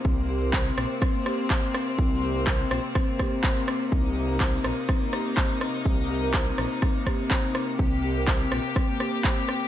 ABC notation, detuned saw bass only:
X:1
M:4/4
L:1/8
Q:"Swing 16ths" 1/4=124
K:Cm
V:1 name="Detuned saw bass" clef=bass
C,,3 B,,, z4 | C,,3 B,,, z4 | C,,3 B,,, z4 | C,,3 B,,, z4 |
C,,3 B,,, z4 |]